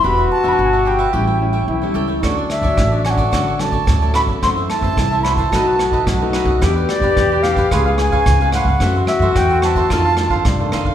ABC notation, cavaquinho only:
X:1
M:4/4
L:1/16
Q:1/4=109
K:Em
V:1 name="Cavaquinho"
[DGBe] [GBe] z [GBe] z [GBe] [DGBe] [GBe] [GA^cg] [Acg]2 [Acg]2 [Acg] [GAcg] [Acg] | [FA^cd] [Acd] z [Acd] z [Acd] [FAcd] [Acd] [FAcd] [Acd]2 [Acd]2 [Acd] [FAcd] [Acd] | [FAce] [Ace] z [Ace] z [Ace] [FAce] [Ace] [^DAB^d] [ABd]2 [ABd]2 [ABd] [DABd] [ABd] | [EGBd] [GBd] z [GBd] z [GBd] [EGBd] [GBd] [^EB^c^e] [Bce]2 [Bce]2 [Bce] [EBce] [Bce] |
[FAce] [Ace] z [Ace] z [Ace] [FAce] [Ace] [_EAc=f] [Acf]2 [Acf]2 [Acf] [EAcf] [Acf] |]